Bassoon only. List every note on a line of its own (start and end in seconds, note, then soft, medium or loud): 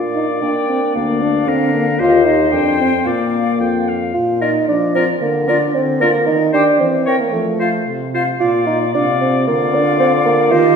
0.00 0.44 A#2 soft
0.42 0.95 A#3 soft
0.96 1.49 D2 medium
1.47 2.00 D3 medium
2.01 2.52 D#2 medium
2.53 3.05 F2 medium
3.06 3.60 A#2 medium
3.60 4.14 F2 soft
4.14 4.43 F4 medium
4.42 4.68 D#4 medium
4.69 4.95 D4 medium
4.96 5.07 C4 medium
5.22 5.50 A#3 medium
5.49 5.76 D4 medium
5.74 6.03 C4 medium
6.01 6.28 A#3 medium
6.27 6.53 D#4 medium
6.53 6.81 D4 medium
6.80 7.21 C4 medium
7.20 7.32 A#3 medium
7.33 7.86 A3 medium
8.41 8.66 F4 medium
8.67 8.79 D#4 medium
8.95 9.07 D4 medium
9.22 9.47 C4 medium
9.48 9.76 A#3 medium
9.75 10.00 D4 medium
10.00 10.12 C4 medium
10.26 10.53 A#3 medium
10.52 10.76 F4 loud